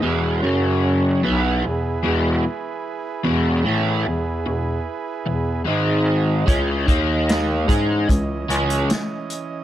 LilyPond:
<<
  \new Staff \with { instrumentName = "Transistor combo organ" } { \time 4/4 \key e \lydian \tempo 4 = 74 << { b'8 cis''4 b'2~ b'8~ | b'2. dis''4~ | dis''1 | } \\ { <e' gis'>8 <fis cis'>4 <e' gis'>2~ <e' gis'>8~ | <e' gis'>2. <gis dis'>4 | <cis' e'>8 <ais dis'>4 <e cis'>2~ <e cis'>8 | } >> }
  \new Staff \with { instrumentName = "Overdriven electric guitar" } { \clef bass \time 4/4 \key e \lydian <e, b, e>8 <fis, cis fis>4 <b, fis b>8 <e, b,>8 <e, b, e>8 r4 | <e, b, e>8 <a, e a>8 <e, b,>8 <e, b,>8 r8 <e, b,>8 <gis, dis gis>4 | <cis gis cis'>8 <dis ais dis'>4 <gis dis' gis'>8 <cis gis>8 <cis gis cis'>8 r4 | }
  \new Staff \with { instrumentName = "Bass clarinet" } { \clef bass \time 4/4 \key e \lydian e,8 fis,4 b,,8 e,8 e,8 r4 | e,8 a,8 e,8 e,8 r8 e,8 gis,4 | cis,8 dis,4 gis,8 cis,8 cis,8 r4 | }
  \new DrumStaff \with { instrumentName = "Drums" } \drummode { \time 4/4 r4 r4 r4 r4 | r4 r4 r4 r4 | <hh bd>8 <hh bd>8 <hh sn>8 <hh bd>8 <hh bd>8 hh16 hh16 <hh sn>8 hh8 | }
>>